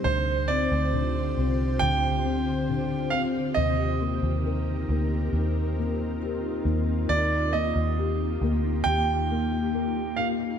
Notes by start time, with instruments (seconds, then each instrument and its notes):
Already playing: ambient pad C5
0.04 fingered electric bass D2, felt piano D3, ambient pad D3 F4 G4, grand piano C5
0.48 felt piano C4, grand piano D5
0.72 fingered electric bass D2
0.94 felt piano D3
1.37 fingered electric bass C2, felt piano C4
1.79 fingered electric bass D2, felt piano D3, grand piano G5
2.25 felt piano C4
2.69 felt piano D3
3.10 felt piano C4, grand piano F5
3.54 fingered electric bass D#2, felt piano C3, ambient pad C4 D#4 A#4, grand piano D#5
4.01 felt piano A#3
4.23 fingered electric bass D#2
4.46 felt piano A#4
4.89 fingered electric bass D2, felt piano A#3
5.33 fingered electric bass D#2, felt piano D#4, ambient pad F4
5.79 felt piano A#3
6.23 felt piano G4
6.65 fingered electric bass D#2, felt piano A#3
7.09 fingered electric bass D#2, ambient pad A#3 G4, felt piano D#4, grand piano D5
7.53 felt piano A#3, grand piano D#5
7.76 fingered electric bass D#2
7.99 felt piano G4
8.41 fingered electric bass D2, felt piano A#3
8.84 fingered electric bass D#2, grand piano G5
8.88 felt piano G4
9.31 felt piano A#3
9.74 felt piano A#4
10.17 felt piano A#3, grand piano F5